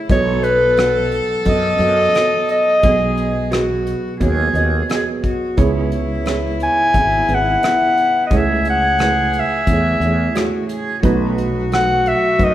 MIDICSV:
0, 0, Header, 1, 6, 480
1, 0, Start_track
1, 0, Key_signature, 4, "minor"
1, 0, Tempo, 683371
1, 70, Time_signature, 4, 2, 24, 8
1, 8811, End_track
2, 0, Start_track
2, 0, Title_t, "Clarinet"
2, 0, Program_c, 0, 71
2, 82, Note_on_c, 0, 73, 101
2, 306, Note_on_c, 0, 71, 97
2, 317, Note_off_c, 0, 73, 0
2, 789, Note_off_c, 0, 71, 0
2, 1047, Note_on_c, 0, 75, 112
2, 1732, Note_off_c, 0, 75, 0
2, 1766, Note_on_c, 0, 75, 105
2, 2452, Note_off_c, 0, 75, 0
2, 4661, Note_on_c, 0, 80, 111
2, 5157, Note_on_c, 0, 78, 103
2, 5168, Note_off_c, 0, 80, 0
2, 5802, Note_off_c, 0, 78, 0
2, 5807, Note_on_c, 0, 75, 66
2, 5879, Note_on_c, 0, 76, 88
2, 5889, Note_off_c, 0, 75, 0
2, 6097, Note_off_c, 0, 76, 0
2, 6110, Note_on_c, 0, 78, 95
2, 6600, Note_on_c, 0, 76, 85
2, 6611, Note_off_c, 0, 78, 0
2, 7535, Note_off_c, 0, 76, 0
2, 8246, Note_on_c, 0, 78, 104
2, 8484, Note_on_c, 0, 76, 94
2, 8495, Note_off_c, 0, 78, 0
2, 8739, Note_on_c, 0, 75, 108
2, 8750, Note_off_c, 0, 76, 0
2, 8811, Note_off_c, 0, 75, 0
2, 8811, End_track
3, 0, Start_track
3, 0, Title_t, "Cello"
3, 0, Program_c, 1, 42
3, 0, Note_on_c, 1, 64, 103
3, 74, Note_on_c, 1, 69, 118
3, 84, Note_off_c, 1, 64, 0
3, 1986, Note_off_c, 1, 69, 0
3, 1990, Note_on_c, 1, 68, 97
3, 2467, Note_on_c, 1, 66, 86
3, 2477, Note_off_c, 1, 68, 0
3, 2951, Note_off_c, 1, 66, 0
3, 2956, Note_on_c, 1, 68, 100
3, 3408, Note_off_c, 1, 68, 0
3, 3438, Note_on_c, 1, 68, 83
3, 3546, Note_off_c, 1, 68, 0
3, 3680, Note_on_c, 1, 66, 88
3, 3919, Note_on_c, 1, 64, 101
3, 3930, Note_off_c, 1, 66, 0
3, 5834, Note_on_c, 1, 68, 102
3, 5844, Note_off_c, 1, 64, 0
3, 7270, Note_on_c, 1, 66, 83
3, 7281, Note_off_c, 1, 68, 0
3, 7511, Note_off_c, 1, 66, 0
3, 7522, Note_on_c, 1, 68, 90
3, 7740, Note_off_c, 1, 68, 0
3, 7753, Note_on_c, 1, 66, 99
3, 8811, Note_off_c, 1, 66, 0
3, 8811, End_track
4, 0, Start_track
4, 0, Title_t, "Felt piano"
4, 0, Program_c, 2, 0
4, 0, Control_c, 2, 64, 127
4, 0, Note_on_c, 2, 57, 65
4, 0, Note_on_c, 2, 64, 59
4, 0, Note_on_c, 2, 68, 62
4, 0, Note_on_c, 2, 69, 58
4, 0, Note_on_c, 2, 71, 75
4, 0, Note_on_c, 2, 73, 68
4, 68, Note_on_c, 2, 35, 63
4, 68, Note_on_c, 2, 59, 87
4, 69, Note_on_c, 2, 66, 80
4, 70, Note_on_c, 2, 75, 96
4, 71, Note_off_c, 2, 69, 0
4, 71, Note_on_c, 2, 69, 79
4, 72, Note_on_c, 2, 47, 59
4, 81, Note_off_c, 2, 64, 0
4, 81, Note_off_c, 2, 73, 0
4, 81, Control_c, 2, 64, 0
4, 83, Note_off_c, 2, 71, 0
4, 84, Note_off_c, 2, 68, 0
4, 87, Note_off_c, 2, 57, 0
4, 205, Control_c, 2, 64, 127
4, 437, Note_off_c, 2, 59, 0
4, 437, Note_off_c, 2, 66, 0
4, 438, Note_off_c, 2, 69, 0
4, 438, Note_off_c, 2, 75, 0
4, 545, Note_on_c, 2, 59, 71
4, 545, Note_on_c, 2, 66, 62
4, 548, Note_on_c, 2, 69, 58
4, 548, Note_on_c, 2, 78, 76
4, 916, Note_off_c, 2, 59, 0
4, 916, Note_off_c, 2, 66, 0
4, 917, Note_off_c, 2, 69, 0
4, 917, Note_off_c, 2, 78, 0
4, 1022, Note_on_c, 2, 66, 61
4, 1023, Note_on_c, 2, 59, 70
4, 1025, Note_on_c, 2, 69, 63
4, 1025, Note_on_c, 2, 75, 75
4, 1211, Note_off_c, 2, 59, 0
4, 1211, Note_off_c, 2, 66, 0
4, 1212, Note_off_c, 2, 69, 0
4, 1212, Note_off_c, 2, 75, 0
4, 1271, Note_on_c, 2, 66, 58
4, 1272, Note_on_c, 2, 59, 61
4, 1273, Note_on_c, 2, 75, 75
4, 1275, Note_on_c, 2, 69, 57
4, 1456, Note_off_c, 2, 59, 0
4, 1456, Note_off_c, 2, 66, 0
4, 1456, Note_off_c, 2, 75, 0
4, 1457, Note_off_c, 2, 69, 0
4, 1514, Note_on_c, 2, 66, 63
4, 1515, Note_on_c, 2, 69, 59
4, 1516, Note_on_c, 2, 59, 66
4, 1520, Note_on_c, 2, 73, 72
4, 1881, Note_off_c, 2, 66, 0
4, 1882, Note_off_c, 2, 59, 0
4, 1882, Note_off_c, 2, 69, 0
4, 1884, Note_off_c, 2, 73, 0
4, 1964, Note_off_c, 2, 35, 0
4, 1966, Note_off_c, 2, 47, 0
4, 1987, Note_on_c, 2, 66, 79
4, 1989, Note_on_c, 2, 47, 60
4, 1991, Note_on_c, 2, 35, 61
4, 1991, Note_on_c, 2, 59, 89
4, 1991, Note_on_c, 2, 68, 75
4, 1996, Note_on_c, 2, 75, 87
4, 2002, Control_c, 2, 64, 0
4, 2141, Control_c, 2, 64, 127
4, 2358, Note_off_c, 2, 66, 0
4, 2360, Note_off_c, 2, 59, 0
4, 2360, Note_off_c, 2, 68, 0
4, 2362, Note_off_c, 2, 75, 0
4, 2466, Note_on_c, 2, 66, 75
4, 2469, Note_on_c, 2, 59, 76
4, 2470, Note_on_c, 2, 68, 70
4, 2473, Note_on_c, 2, 71, 88
4, 2838, Note_off_c, 2, 66, 0
4, 2839, Note_off_c, 2, 59, 0
4, 2840, Note_off_c, 2, 68, 0
4, 2841, Note_off_c, 2, 71, 0
4, 2952, Note_on_c, 2, 59, 75
4, 2953, Note_on_c, 2, 66, 68
4, 2957, Note_on_c, 2, 73, 85
4, 2958, Note_on_c, 2, 68, 69
4, 3137, Note_off_c, 2, 59, 0
4, 3138, Note_off_c, 2, 66, 0
4, 3139, Note_off_c, 2, 73, 0
4, 3140, Note_off_c, 2, 68, 0
4, 3193, Note_on_c, 2, 59, 72
4, 3199, Note_on_c, 2, 75, 82
4, 3200, Note_on_c, 2, 66, 65
4, 3200, Note_on_c, 2, 68, 68
4, 3377, Note_off_c, 2, 59, 0
4, 3381, Note_off_c, 2, 66, 0
4, 3381, Note_off_c, 2, 68, 0
4, 3381, Note_off_c, 2, 75, 0
4, 3435, Note_on_c, 2, 59, 70
4, 3438, Note_on_c, 2, 66, 68
4, 3439, Note_on_c, 2, 68, 68
4, 3443, Note_on_c, 2, 75, 82
4, 3803, Note_off_c, 2, 59, 0
4, 3804, Note_off_c, 2, 66, 0
4, 3805, Note_off_c, 2, 68, 0
4, 3807, Note_off_c, 2, 75, 0
4, 3886, Note_off_c, 2, 35, 0
4, 3886, Note_off_c, 2, 47, 0
4, 3915, Note_on_c, 2, 49, 66
4, 3915, Note_on_c, 2, 59, 97
4, 3915, Note_on_c, 2, 68, 91
4, 3916, Note_on_c, 2, 37, 71
4, 3916, Note_on_c, 2, 64, 92
4, 3919, Note_on_c, 2, 73, 113
4, 3926, Control_c, 2, 64, 0
4, 4031, Control_c, 2, 64, 127
4, 4282, Note_off_c, 2, 59, 0
4, 4283, Note_off_c, 2, 64, 0
4, 4283, Note_off_c, 2, 68, 0
4, 4285, Note_off_c, 2, 73, 0
4, 4387, Note_on_c, 2, 59, 77
4, 4393, Note_on_c, 2, 68, 70
4, 4394, Note_on_c, 2, 64, 73
4, 4398, Note_on_c, 2, 73, 91
4, 4759, Note_off_c, 2, 59, 0
4, 4762, Note_off_c, 2, 64, 0
4, 4762, Note_off_c, 2, 68, 0
4, 4764, Note_off_c, 2, 73, 0
4, 4873, Note_on_c, 2, 59, 66
4, 4874, Note_on_c, 2, 64, 57
4, 4875, Note_on_c, 2, 68, 61
4, 4877, Note_on_c, 2, 76, 74
4, 5058, Note_off_c, 2, 59, 0
4, 5058, Note_off_c, 2, 64, 0
4, 5059, Note_off_c, 2, 68, 0
4, 5060, Note_off_c, 2, 76, 0
4, 5117, Note_on_c, 2, 59, 62
4, 5121, Note_on_c, 2, 64, 58
4, 5124, Note_on_c, 2, 68, 62
4, 5124, Note_on_c, 2, 71, 71
4, 5300, Note_off_c, 2, 59, 0
4, 5302, Note_off_c, 2, 64, 0
4, 5303, Note_off_c, 2, 68, 0
4, 5303, Note_off_c, 2, 71, 0
4, 5355, Note_on_c, 2, 59, 67
4, 5356, Note_on_c, 2, 64, 60
4, 5357, Note_on_c, 2, 68, 57
4, 5360, Note_on_c, 2, 76, 71
4, 5722, Note_off_c, 2, 59, 0
4, 5723, Note_off_c, 2, 64, 0
4, 5723, Note_off_c, 2, 68, 0
4, 5725, Note_off_c, 2, 76, 0
4, 5807, Note_off_c, 2, 37, 0
4, 5807, Note_off_c, 2, 49, 0
4, 5844, Note_on_c, 2, 57, 87
4, 5844, Note_on_c, 2, 64, 81
4, 5845, Note_on_c, 2, 73, 94
4, 5846, Control_c, 2, 64, 0
4, 5848, Note_on_c, 2, 49, 58
4, 5850, Note_on_c, 2, 68, 78
4, 5851, Note_on_c, 2, 37, 60
4, 5958, Control_c, 2, 64, 127
4, 6206, Note_off_c, 2, 57, 0
4, 6206, Note_off_c, 2, 64, 0
4, 6207, Note_off_c, 2, 73, 0
4, 6209, Note_off_c, 2, 68, 0
4, 6318, Note_on_c, 2, 57, 65
4, 6323, Note_on_c, 2, 64, 62
4, 6323, Note_on_c, 2, 68, 63
4, 6326, Note_on_c, 2, 71, 74
4, 6683, Note_off_c, 2, 57, 0
4, 6685, Note_off_c, 2, 64, 0
4, 6685, Note_off_c, 2, 68, 0
4, 6687, Note_off_c, 2, 71, 0
4, 6808, Note_on_c, 2, 57, 67
4, 6808, Note_on_c, 2, 64, 63
4, 6812, Note_on_c, 2, 68, 63
4, 6813, Note_on_c, 2, 73, 72
4, 6984, Note_off_c, 2, 57, 0
4, 6984, Note_off_c, 2, 64, 0
4, 6986, Note_off_c, 2, 68, 0
4, 6986, Note_off_c, 2, 73, 0
4, 7039, Note_on_c, 2, 68, 58
4, 7040, Note_on_c, 2, 64, 59
4, 7041, Note_on_c, 2, 57, 64
4, 7046, Note_on_c, 2, 73, 73
4, 7219, Note_off_c, 2, 64, 0
4, 7219, Note_off_c, 2, 68, 0
4, 7220, Note_off_c, 2, 57, 0
4, 7223, Note_off_c, 2, 73, 0
4, 7273, Note_on_c, 2, 57, 78
4, 7273, Note_on_c, 2, 68, 71
4, 7274, Note_on_c, 2, 64, 68
4, 7274, Note_on_c, 2, 73, 84
4, 7639, Note_off_c, 2, 57, 0
4, 7639, Note_off_c, 2, 64, 0
4, 7639, Note_off_c, 2, 68, 0
4, 7640, Note_off_c, 2, 73, 0
4, 7730, Note_off_c, 2, 49, 0
4, 7731, Note_off_c, 2, 37, 0
4, 7745, Note_on_c, 2, 47, 71
4, 7748, Note_on_c, 2, 35, 73
4, 7748, Note_on_c, 2, 57, 102
4, 7749, Note_on_c, 2, 63, 92
4, 7749, Note_on_c, 2, 71, 110
4, 7754, Note_on_c, 2, 66, 101
4, 7759, Control_c, 2, 64, 0
4, 7889, Control_c, 2, 64, 127
4, 8116, Note_off_c, 2, 57, 0
4, 8116, Note_off_c, 2, 63, 0
4, 8117, Note_off_c, 2, 71, 0
4, 8119, Note_off_c, 2, 66, 0
4, 8222, Note_on_c, 2, 66, 59
4, 8224, Note_on_c, 2, 57, 71
4, 8227, Note_on_c, 2, 63, 62
4, 8228, Note_on_c, 2, 69, 73
4, 8593, Note_off_c, 2, 57, 0
4, 8593, Note_off_c, 2, 66, 0
4, 8595, Note_off_c, 2, 63, 0
4, 8595, Note_off_c, 2, 69, 0
4, 8699, Note_on_c, 2, 57, 68
4, 8700, Note_on_c, 2, 63, 64
4, 8704, Note_on_c, 2, 66, 64
4, 8704, Note_on_c, 2, 71, 74
4, 8811, Note_off_c, 2, 35, 0
4, 8811, Note_off_c, 2, 47, 0
4, 8811, Note_off_c, 2, 57, 0
4, 8811, Note_off_c, 2, 63, 0
4, 8811, Note_off_c, 2, 66, 0
4, 8811, Note_off_c, 2, 71, 0
4, 8811, End_track
5, 0, Start_track
5, 0, Title_t, "Fretless electric bass"
5, 0, Program_c, 3, 35
5, 66, Note_on_c, 3, 35, 95
5, 839, Note_off_c, 3, 35, 0
5, 1022, Note_on_c, 3, 42, 89
5, 1219, Note_off_c, 3, 42, 0
5, 1259, Note_on_c, 3, 42, 90
5, 1457, Note_off_c, 3, 42, 0
5, 1989, Note_on_c, 3, 35, 85
5, 2761, Note_off_c, 3, 35, 0
5, 2953, Note_on_c, 3, 39, 90
5, 3146, Note_off_c, 3, 39, 0
5, 3184, Note_on_c, 3, 39, 89
5, 3381, Note_off_c, 3, 39, 0
5, 3917, Note_on_c, 3, 37, 88
5, 4686, Note_off_c, 3, 37, 0
5, 4875, Note_on_c, 3, 32, 88
5, 5068, Note_off_c, 3, 32, 0
5, 5119, Note_on_c, 3, 32, 94
5, 5310, Note_off_c, 3, 32, 0
5, 5834, Note_on_c, 3, 37, 85
5, 6602, Note_off_c, 3, 37, 0
5, 6792, Note_on_c, 3, 40, 90
5, 6985, Note_off_c, 3, 40, 0
5, 7025, Note_on_c, 3, 40, 95
5, 7220, Note_off_c, 3, 40, 0
5, 7745, Note_on_c, 3, 35, 92
5, 8516, Note_off_c, 3, 35, 0
5, 8704, Note_on_c, 3, 42, 93
5, 8811, Note_off_c, 3, 42, 0
5, 8811, End_track
6, 0, Start_track
6, 0, Title_t, "Drums"
6, 65, Note_on_c, 9, 42, 60
6, 67, Note_on_c, 9, 36, 80
6, 135, Note_off_c, 9, 42, 0
6, 137, Note_off_c, 9, 36, 0
6, 305, Note_on_c, 9, 42, 51
6, 375, Note_off_c, 9, 42, 0
6, 542, Note_on_c, 9, 42, 62
6, 553, Note_on_c, 9, 37, 85
6, 612, Note_off_c, 9, 42, 0
6, 624, Note_off_c, 9, 37, 0
6, 782, Note_on_c, 9, 42, 43
6, 852, Note_off_c, 9, 42, 0
6, 1019, Note_on_c, 9, 42, 58
6, 1026, Note_on_c, 9, 36, 67
6, 1090, Note_off_c, 9, 42, 0
6, 1097, Note_off_c, 9, 36, 0
6, 1263, Note_on_c, 9, 42, 42
6, 1333, Note_off_c, 9, 42, 0
6, 1506, Note_on_c, 9, 42, 62
6, 1518, Note_on_c, 9, 37, 84
6, 1577, Note_off_c, 9, 42, 0
6, 1588, Note_off_c, 9, 37, 0
6, 1747, Note_on_c, 9, 42, 47
6, 1817, Note_off_c, 9, 42, 0
6, 1987, Note_on_c, 9, 42, 64
6, 1991, Note_on_c, 9, 36, 82
6, 2057, Note_off_c, 9, 42, 0
6, 2062, Note_off_c, 9, 36, 0
6, 2229, Note_on_c, 9, 42, 47
6, 2299, Note_off_c, 9, 42, 0
6, 2470, Note_on_c, 9, 42, 65
6, 2481, Note_on_c, 9, 37, 88
6, 2540, Note_off_c, 9, 42, 0
6, 2551, Note_off_c, 9, 37, 0
6, 2716, Note_on_c, 9, 42, 52
6, 2786, Note_off_c, 9, 42, 0
6, 2954, Note_on_c, 9, 42, 65
6, 2956, Note_on_c, 9, 36, 62
6, 3024, Note_off_c, 9, 42, 0
6, 3027, Note_off_c, 9, 36, 0
6, 3195, Note_on_c, 9, 42, 46
6, 3265, Note_off_c, 9, 42, 0
6, 3437, Note_on_c, 9, 42, 66
6, 3449, Note_on_c, 9, 37, 82
6, 3508, Note_off_c, 9, 42, 0
6, 3519, Note_off_c, 9, 37, 0
6, 3678, Note_on_c, 9, 36, 60
6, 3679, Note_on_c, 9, 42, 48
6, 3749, Note_off_c, 9, 36, 0
6, 3749, Note_off_c, 9, 42, 0
6, 3913, Note_on_c, 9, 42, 63
6, 3918, Note_on_c, 9, 36, 83
6, 3984, Note_off_c, 9, 42, 0
6, 3988, Note_off_c, 9, 36, 0
6, 4156, Note_on_c, 9, 42, 49
6, 4226, Note_off_c, 9, 42, 0
6, 4394, Note_on_c, 9, 42, 62
6, 4405, Note_on_c, 9, 37, 82
6, 4464, Note_off_c, 9, 42, 0
6, 4475, Note_off_c, 9, 37, 0
6, 4635, Note_on_c, 9, 42, 46
6, 4705, Note_off_c, 9, 42, 0
6, 4875, Note_on_c, 9, 42, 61
6, 4877, Note_on_c, 9, 36, 67
6, 4945, Note_off_c, 9, 42, 0
6, 4948, Note_off_c, 9, 36, 0
6, 5116, Note_on_c, 9, 42, 43
6, 5186, Note_off_c, 9, 42, 0
6, 5357, Note_on_c, 9, 42, 62
6, 5368, Note_on_c, 9, 37, 84
6, 5427, Note_off_c, 9, 42, 0
6, 5439, Note_off_c, 9, 37, 0
6, 5602, Note_on_c, 9, 42, 50
6, 5672, Note_off_c, 9, 42, 0
6, 5834, Note_on_c, 9, 42, 64
6, 5837, Note_on_c, 9, 36, 82
6, 5904, Note_off_c, 9, 42, 0
6, 5907, Note_off_c, 9, 36, 0
6, 6074, Note_on_c, 9, 42, 52
6, 6145, Note_off_c, 9, 42, 0
6, 6312, Note_on_c, 9, 42, 64
6, 6324, Note_on_c, 9, 37, 81
6, 6383, Note_off_c, 9, 42, 0
6, 6394, Note_off_c, 9, 37, 0
6, 6554, Note_on_c, 9, 42, 51
6, 6624, Note_off_c, 9, 42, 0
6, 6791, Note_on_c, 9, 42, 68
6, 6794, Note_on_c, 9, 36, 68
6, 6861, Note_off_c, 9, 42, 0
6, 6864, Note_off_c, 9, 36, 0
6, 7033, Note_on_c, 9, 42, 49
6, 7103, Note_off_c, 9, 42, 0
6, 7272, Note_on_c, 9, 42, 68
6, 7283, Note_on_c, 9, 37, 85
6, 7342, Note_off_c, 9, 42, 0
6, 7353, Note_off_c, 9, 37, 0
6, 7509, Note_on_c, 9, 42, 53
6, 7579, Note_off_c, 9, 42, 0
6, 7750, Note_on_c, 9, 36, 87
6, 7750, Note_on_c, 9, 42, 68
6, 7820, Note_off_c, 9, 36, 0
6, 7820, Note_off_c, 9, 42, 0
6, 7993, Note_on_c, 9, 42, 53
6, 8063, Note_off_c, 9, 42, 0
6, 8231, Note_on_c, 9, 42, 60
6, 8243, Note_on_c, 9, 37, 83
6, 8302, Note_off_c, 9, 42, 0
6, 8313, Note_off_c, 9, 37, 0
6, 8470, Note_on_c, 9, 42, 46
6, 8540, Note_off_c, 9, 42, 0
6, 8706, Note_on_c, 9, 36, 67
6, 8709, Note_on_c, 9, 42, 63
6, 8776, Note_off_c, 9, 36, 0
6, 8779, Note_off_c, 9, 42, 0
6, 8811, End_track
0, 0, End_of_file